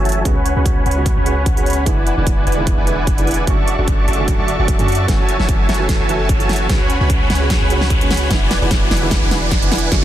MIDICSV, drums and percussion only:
0, 0, Header, 1, 2, 480
1, 0, Start_track
1, 0, Tempo, 402685
1, 302, Time_signature, 4, 2, 24, 8
1, 11971, End_track
2, 0, Start_track
2, 0, Title_t, "Drums"
2, 63, Note_on_c, 9, 42, 49
2, 107, Note_off_c, 9, 42, 0
2, 107, Note_on_c, 9, 42, 65
2, 143, Note_off_c, 9, 42, 0
2, 143, Note_on_c, 9, 42, 78
2, 262, Note_off_c, 9, 42, 0
2, 301, Note_on_c, 9, 36, 91
2, 303, Note_on_c, 9, 42, 80
2, 421, Note_off_c, 9, 36, 0
2, 422, Note_off_c, 9, 42, 0
2, 543, Note_on_c, 9, 42, 63
2, 663, Note_off_c, 9, 42, 0
2, 781, Note_on_c, 9, 36, 95
2, 784, Note_on_c, 9, 42, 78
2, 901, Note_off_c, 9, 36, 0
2, 903, Note_off_c, 9, 42, 0
2, 1024, Note_on_c, 9, 42, 48
2, 1089, Note_off_c, 9, 42, 0
2, 1089, Note_on_c, 9, 42, 62
2, 1208, Note_off_c, 9, 42, 0
2, 1261, Note_on_c, 9, 36, 94
2, 1264, Note_on_c, 9, 42, 83
2, 1381, Note_off_c, 9, 36, 0
2, 1383, Note_off_c, 9, 42, 0
2, 1503, Note_on_c, 9, 42, 65
2, 1622, Note_off_c, 9, 42, 0
2, 1742, Note_on_c, 9, 36, 98
2, 1743, Note_on_c, 9, 42, 79
2, 1861, Note_off_c, 9, 36, 0
2, 1862, Note_off_c, 9, 42, 0
2, 1874, Note_on_c, 9, 42, 61
2, 1983, Note_off_c, 9, 42, 0
2, 1983, Note_on_c, 9, 42, 48
2, 2026, Note_off_c, 9, 42, 0
2, 2026, Note_on_c, 9, 42, 65
2, 2063, Note_off_c, 9, 42, 0
2, 2063, Note_on_c, 9, 42, 78
2, 2183, Note_off_c, 9, 42, 0
2, 2221, Note_on_c, 9, 36, 97
2, 2223, Note_on_c, 9, 42, 78
2, 2341, Note_off_c, 9, 36, 0
2, 2343, Note_off_c, 9, 42, 0
2, 2463, Note_on_c, 9, 42, 64
2, 2582, Note_off_c, 9, 42, 0
2, 2701, Note_on_c, 9, 36, 94
2, 2702, Note_on_c, 9, 42, 78
2, 2820, Note_off_c, 9, 36, 0
2, 2822, Note_off_c, 9, 42, 0
2, 2942, Note_on_c, 9, 42, 49
2, 3006, Note_off_c, 9, 42, 0
2, 3006, Note_on_c, 9, 42, 63
2, 3126, Note_off_c, 9, 42, 0
2, 3181, Note_on_c, 9, 36, 96
2, 3181, Note_on_c, 9, 42, 76
2, 3300, Note_off_c, 9, 36, 0
2, 3301, Note_off_c, 9, 42, 0
2, 3422, Note_on_c, 9, 42, 64
2, 3541, Note_off_c, 9, 42, 0
2, 3661, Note_on_c, 9, 36, 98
2, 3662, Note_on_c, 9, 42, 78
2, 3780, Note_off_c, 9, 36, 0
2, 3781, Note_off_c, 9, 42, 0
2, 3792, Note_on_c, 9, 42, 59
2, 3901, Note_off_c, 9, 42, 0
2, 3901, Note_on_c, 9, 42, 47
2, 3945, Note_off_c, 9, 42, 0
2, 3945, Note_on_c, 9, 42, 62
2, 3981, Note_off_c, 9, 42, 0
2, 3981, Note_on_c, 9, 42, 77
2, 4100, Note_off_c, 9, 42, 0
2, 4140, Note_on_c, 9, 36, 96
2, 4141, Note_on_c, 9, 42, 76
2, 4260, Note_off_c, 9, 36, 0
2, 4260, Note_off_c, 9, 42, 0
2, 4381, Note_on_c, 9, 42, 62
2, 4501, Note_off_c, 9, 42, 0
2, 4620, Note_on_c, 9, 36, 98
2, 4621, Note_on_c, 9, 42, 72
2, 4740, Note_off_c, 9, 36, 0
2, 4740, Note_off_c, 9, 42, 0
2, 4861, Note_on_c, 9, 42, 47
2, 4926, Note_off_c, 9, 42, 0
2, 4926, Note_on_c, 9, 42, 62
2, 5045, Note_off_c, 9, 42, 0
2, 5100, Note_on_c, 9, 36, 94
2, 5100, Note_on_c, 9, 42, 76
2, 5219, Note_off_c, 9, 36, 0
2, 5219, Note_off_c, 9, 42, 0
2, 5342, Note_on_c, 9, 42, 63
2, 5461, Note_off_c, 9, 42, 0
2, 5580, Note_on_c, 9, 36, 96
2, 5581, Note_on_c, 9, 42, 76
2, 5699, Note_off_c, 9, 36, 0
2, 5700, Note_off_c, 9, 42, 0
2, 5711, Note_on_c, 9, 42, 60
2, 5821, Note_off_c, 9, 42, 0
2, 5821, Note_on_c, 9, 42, 49
2, 5865, Note_off_c, 9, 42, 0
2, 5865, Note_on_c, 9, 42, 65
2, 5901, Note_off_c, 9, 42, 0
2, 5901, Note_on_c, 9, 42, 79
2, 6020, Note_off_c, 9, 42, 0
2, 6060, Note_on_c, 9, 36, 100
2, 6061, Note_on_c, 9, 38, 49
2, 6061, Note_on_c, 9, 42, 75
2, 6179, Note_off_c, 9, 36, 0
2, 6180, Note_off_c, 9, 38, 0
2, 6180, Note_off_c, 9, 42, 0
2, 6301, Note_on_c, 9, 42, 60
2, 6420, Note_off_c, 9, 42, 0
2, 6431, Note_on_c, 9, 38, 41
2, 6539, Note_on_c, 9, 36, 100
2, 6541, Note_on_c, 9, 42, 73
2, 6550, Note_off_c, 9, 38, 0
2, 6659, Note_off_c, 9, 36, 0
2, 6660, Note_off_c, 9, 42, 0
2, 6781, Note_on_c, 9, 38, 51
2, 6781, Note_on_c, 9, 42, 45
2, 6846, Note_off_c, 9, 42, 0
2, 6846, Note_on_c, 9, 42, 61
2, 6900, Note_off_c, 9, 38, 0
2, 6966, Note_off_c, 9, 42, 0
2, 7020, Note_on_c, 9, 36, 96
2, 7021, Note_on_c, 9, 38, 53
2, 7021, Note_on_c, 9, 42, 76
2, 7139, Note_off_c, 9, 36, 0
2, 7140, Note_off_c, 9, 38, 0
2, 7140, Note_off_c, 9, 42, 0
2, 7261, Note_on_c, 9, 42, 64
2, 7380, Note_off_c, 9, 42, 0
2, 7500, Note_on_c, 9, 36, 102
2, 7501, Note_on_c, 9, 42, 76
2, 7619, Note_off_c, 9, 36, 0
2, 7620, Note_off_c, 9, 42, 0
2, 7630, Note_on_c, 9, 42, 58
2, 7740, Note_off_c, 9, 42, 0
2, 7740, Note_on_c, 9, 38, 59
2, 7740, Note_on_c, 9, 42, 48
2, 7783, Note_off_c, 9, 42, 0
2, 7783, Note_on_c, 9, 42, 60
2, 7820, Note_off_c, 9, 42, 0
2, 7820, Note_on_c, 9, 42, 77
2, 7859, Note_off_c, 9, 38, 0
2, 7939, Note_off_c, 9, 42, 0
2, 7980, Note_on_c, 9, 36, 98
2, 7980, Note_on_c, 9, 38, 60
2, 7980, Note_on_c, 9, 42, 75
2, 8099, Note_off_c, 9, 36, 0
2, 8099, Note_off_c, 9, 38, 0
2, 8099, Note_off_c, 9, 42, 0
2, 8221, Note_on_c, 9, 42, 59
2, 8341, Note_off_c, 9, 42, 0
2, 8460, Note_on_c, 9, 36, 99
2, 8460, Note_on_c, 9, 42, 72
2, 8579, Note_off_c, 9, 36, 0
2, 8580, Note_off_c, 9, 42, 0
2, 8701, Note_on_c, 9, 38, 62
2, 8701, Note_on_c, 9, 42, 46
2, 8766, Note_off_c, 9, 42, 0
2, 8766, Note_on_c, 9, 42, 60
2, 8820, Note_off_c, 9, 38, 0
2, 8885, Note_off_c, 9, 42, 0
2, 8940, Note_on_c, 9, 36, 95
2, 8941, Note_on_c, 9, 38, 67
2, 8941, Note_on_c, 9, 42, 75
2, 9060, Note_off_c, 9, 36, 0
2, 9060, Note_off_c, 9, 38, 0
2, 9060, Note_off_c, 9, 42, 0
2, 9181, Note_on_c, 9, 42, 62
2, 9300, Note_off_c, 9, 42, 0
2, 9311, Note_on_c, 9, 38, 58
2, 9420, Note_on_c, 9, 36, 101
2, 9421, Note_on_c, 9, 42, 73
2, 9430, Note_off_c, 9, 38, 0
2, 9540, Note_off_c, 9, 36, 0
2, 9541, Note_off_c, 9, 42, 0
2, 9551, Note_on_c, 9, 42, 56
2, 9662, Note_off_c, 9, 42, 0
2, 9662, Note_on_c, 9, 38, 73
2, 9662, Note_on_c, 9, 42, 49
2, 9705, Note_off_c, 9, 42, 0
2, 9705, Note_on_c, 9, 42, 64
2, 9741, Note_off_c, 9, 42, 0
2, 9741, Note_on_c, 9, 42, 76
2, 9781, Note_off_c, 9, 38, 0
2, 9860, Note_off_c, 9, 42, 0
2, 9900, Note_on_c, 9, 36, 101
2, 9901, Note_on_c, 9, 38, 75
2, 9901, Note_on_c, 9, 42, 78
2, 10020, Note_off_c, 9, 36, 0
2, 10020, Note_off_c, 9, 38, 0
2, 10020, Note_off_c, 9, 42, 0
2, 10142, Note_on_c, 9, 38, 73
2, 10142, Note_on_c, 9, 42, 66
2, 10261, Note_off_c, 9, 38, 0
2, 10261, Note_off_c, 9, 42, 0
2, 10381, Note_on_c, 9, 36, 98
2, 10382, Note_on_c, 9, 38, 76
2, 10382, Note_on_c, 9, 42, 74
2, 10500, Note_off_c, 9, 36, 0
2, 10501, Note_off_c, 9, 38, 0
2, 10501, Note_off_c, 9, 42, 0
2, 10622, Note_on_c, 9, 38, 78
2, 10622, Note_on_c, 9, 42, 48
2, 10687, Note_off_c, 9, 42, 0
2, 10687, Note_on_c, 9, 42, 62
2, 10741, Note_off_c, 9, 38, 0
2, 10806, Note_off_c, 9, 42, 0
2, 10861, Note_on_c, 9, 36, 98
2, 10863, Note_on_c, 9, 38, 84
2, 10863, Note_on_c, 9, 42, 78
2, 10980, Note_off_c, 9, 36, 0
2, 10982, Note_off_c, 9, 38, 0
2, 10982, Note_off_c, 9, 42, 0
2, 11102, Note_on_c, 9, 38, 83
2, 11102, Note_on_c, 9, 42, 65
2, 11221, Note_off_c, 9, 38, 0
2, 11221, Note_off_c, 9, 42, 0
2, 11341, Note_on_c, 9, 36, 103
2, 11342, Note_on_c, 9, 38, 86
2, 11342, Note_on_c, 9, 42, 76
2, 11460, Note_off_c, 9, 36, 0
2, 11461, Note_off_c, 9, 38, 0
2, 11461, Note_off_c, 9, 42, 0
2, 11473, Note_on_c, 9, 42, 62
2, 11582, Note_off_c, 9, 42, 0
2, 11582, Note_on_c, 9, 38, 90
2, 11582, Note_on_c, 9, 42, 49
2, 11625, Note_off_c, 9, 42, 0
2, 11625, Note_on_c, 9, 42, 62
2, 11662, Note_off_c, 9, 42, 0
2, 11662, Note_on_c, 9, 42, 78
2, 11702, Note_off_c, 9, 38, 0
2, 11782, Note_off_c, 9, 42, 0
2, 11820, Note_on_c, 9, 36, 102
2, 11822, Note_on_c, 9, 38, 94
2, 11822, Note_on_c, 9, 42, 83
2, 11940, Note_off_c, 9, 36, 0
2, 11941, Note_off_c, 9, 38, 0
2, 11941, Note_off_c, 9, 42, 0
2, 11971, End_track
0, 0, End_of_file